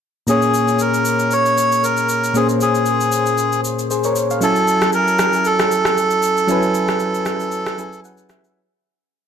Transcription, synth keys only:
0.27 A#2 A#3 C#4 G#4
0.31 C#5
2.34 A#2 A#3 C#4 G#4
2.38 C5
3.91 G#4 C5
4.05 A#4 C#5
4.31 C#5 F5
4.40 F#3 C#4 E4 G#5
4.45 A5
6.47 F#3 C#4 E4 G#5
6.52 B4
7.78 F#3 C#4 E4 G#4 B4 G#5
8.05 F#5
8.31 E5

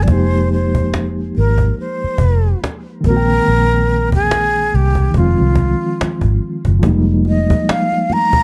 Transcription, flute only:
0.03 D5
0.11 C5
0.53 C5
1.38 A#4
1.80 C5
3.06 A#4
4.15 G#4
4.75 G4
5.17 F4
7.28 D#5
7.71 F5
8.13 A#5

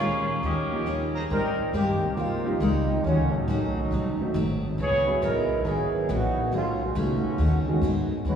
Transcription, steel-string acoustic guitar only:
0.00 A#2 G#3 C#4 F4
0.43 D#3 G3 C#4 F4
0.86 D#3 G3 C#4 F4
1.30 G#3 C4 G4 A#4
1.74 G#3 C4 G4 A#4
2.17 G#3 C4 G4 A#4
2.61 G#3 C4 G4 A#4
3.05 D#3 A3 C#4 F#4
3.49 D#3 A3 C#4 F#4
3.92 G#2 F#3 A3 C4
4.34 G#2 F#3 A3 C4
4.78 C#3 E3 B3 D#4
5.23 C#3 E3 B3 D#4
5.65 C#3 E3 B3 D#4
6.09 C#3 E3 B3 D#4
6.52 B2 A3 D#4 G#4
6.95 B2 A3 D#4 G#4
7.38 B2 A3 D#4 G#4
7.83 B2 A3 D#4 G#4
8.25 E3 G#3 C#4 F#4

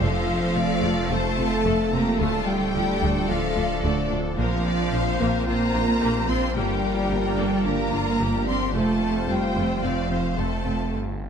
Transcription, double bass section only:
0.02 F1
0.56 F1
0.84 F1
1.11 F1
1.39 F1
1.66 F1
1.94 F1
2.21 D2
2.75 D2
3.02 D2
3.29 D2
3.57 D2
3.84 D2
4.12 D2
4.39 A#1
4.93 A#1
5.20 A#1
5.48 A#1
5.75 A#1
6.03 A#1
6.30 A#1
6.57 G1
7.11 G1
7.39 G1
7.66 G1
7.93 G1
8.20 G1
8.47 G1
8.74 F1
9.29 F1
9.57 F1
9.84 F1
10.11 F1
10.38 F1
10.65 F1

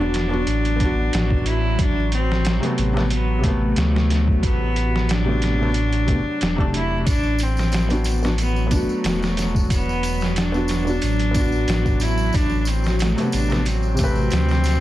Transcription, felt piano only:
Already playing: B3
0.00 D4 F#4
0.29 B3 D4
0.34 F#4
0.76 B3
0.81 D4
0.85 F#4
2.60 C3 A3
2.65 B3
2.93 C3 A3
2.97 B3
3.39 C3
3.43 A3
3.48 B3
5.24 C3 A3
5.29 B3
5.58 C3 A3
5.63 B3
6.06 C3 A3
6.10 B3
6.56 C3 A3
6.60 D4
7.89 B3 D4
7.93 F#4
8.22 B3 D4
8.27 F#4
8.67 B3
8.71 D4 F#4
10.52 B3 D4
10.57 F#4
10.85 B3 D4
10.89 F#4
11.31 B3
11.35 D4
11.40 F#4
13.16 C3 A3
13.20 B3
13.48 C3 A3
13.53 B3
13.94 C3
13.99 A3
14.04 B4

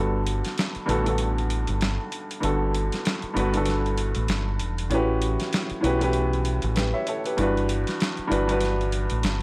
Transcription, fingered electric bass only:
Already playing: G1
0.76 muted fingered electric bass stroke
0.88 A1
1.69 G1
2.43 G1
3.23 muted fingered electric bass stroke
3.36 G1
4.16 A1
4.29 G1
4.60 E1
4.90 A1
5.71 muted fingered electric bass stroke
5.84 B1
6.64 A1
7.38 G1
8.19 muted fingered electric bass stroke
8.31 G1
9.11 A1
9.24 G1

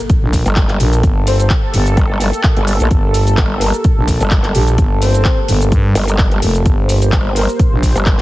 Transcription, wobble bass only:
0.46 G1
1.97 G1
2.57 G1
2.80 A#1
3.38 G1
4.21 G1
5.95 G1
7.13 G1
7.96 G1

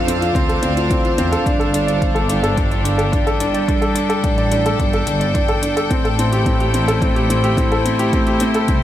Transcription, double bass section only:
Already playing: F2
0.35 D2
0.64 D2
1.19 E2
1.46 G1
4.24 A1
4.79 G1
5.08 G1
5.91 A1
8.69 C2

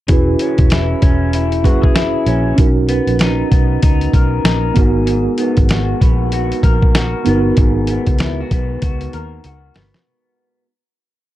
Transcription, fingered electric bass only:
0.09 E1
0.58 E1
1.02 E1
1.64 F#1
2.26 A#1
2.58 B1
3.07 A#1
3.52 B1
3.83 C#2
4.13 B1
4.44 A#1
4.76 G#1
5.57 G#1
6.01 A#1
6.63 A#1
7.26 G1
7.57 G#1
8.07 C#2
8.51 B1
8.82 C#2
9.14 D#2
9.45 C#2
9.76 G1

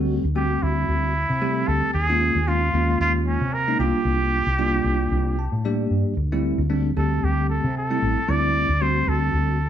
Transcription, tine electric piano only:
Already playing: G3 A3 C4 F#4
0.36 G3 A3 C4 F#4
1.42 G3 A3 C4 G4
2.10 G#3 A#3 C#4 F4
2.48 G#3 A#3 C#4 F4
2.74 G#3 A#3 C#4 F4
3.68 G#3 A#3 C#4 D#4
3.80 G3 A#3 D4 F4
4.59 G3 A#3 D4 F4
5.39 A5
5.65 G3 A#3 D4 G4 D5
6.32 G3 A3 C4 E4
6.70 G3 A3 C4 D4
6.97 G3 A3 C4 G4
7.91 G3 A3 C4 E4
8.28 G3 A3 C4 E4
8.82 G3 A3 C4 F#4

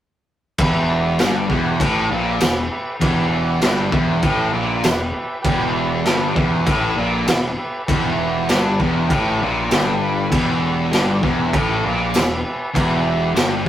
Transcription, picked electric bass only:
0.59 E1
1.19 G1
1.50 E1
1.80 A1
2.10 A#1
2.40 E1
3.02 E1
3.62 G1
3.93 E1
4.23 A1
4.55 A#1
4.86 E1
5.45 E1
6.07 G1
6.36 E1
6.66 A1
6.96 A#1
7.26 E1
7.89 E1
8.49 G1
8.80 E1
9.10 A1
9.41 A#1
9.70 G1
10.32 E1
10.92 G1
11.23 E1
11.53 A1
11.85 A#1
12.16 E1
12.75 E1
13.37 G1

